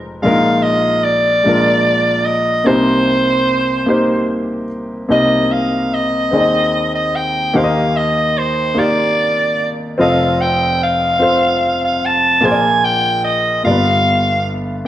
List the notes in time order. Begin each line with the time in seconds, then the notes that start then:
Already playing: F1 F2 G#3 D#4 F4 B4 C5
0.22 A#1 A#2 G#3 D4 F4 A#4 F5
0.30 D#4
0.63 D#5
1.04 D5
1.44 A#1 A#2 G#3 D4 F4
1.48 A#4
2.26 D#5
2.64 C2 C3 A#3 D#4 G4 C5
3.86 A#3 D#4 G4 C5
5.09 C2 C3 A#3 D#4 G4 D#5
5.52 F5
5.94 D#5
6.31 D#2 D#3 C4 D#4 G#4 D5
6.41 D#5
6.95 D#5
7.16 G5
7.54 D#2 D#3 A#3 D#4 G4 C5 F5
7.64 D#5
7.97 D#5
8.38 C5
8.74 A#3 D#4 G4 F5
8.79 D5
9.98 F1 F2 C4 F4 A4 D#5 F5
10.41 G5
10.83 F5
11.19 C4 F4 A4 C5
11.85 F5
12.06 A5
12.41 A#1 A#2 A#3 F4 G#4 C5
12.46 G#5
12.51 D5
12.84 G5
13.24 D#5
13.64 G1 G2 A#3 F4 G4 D5 F5
13.70 B3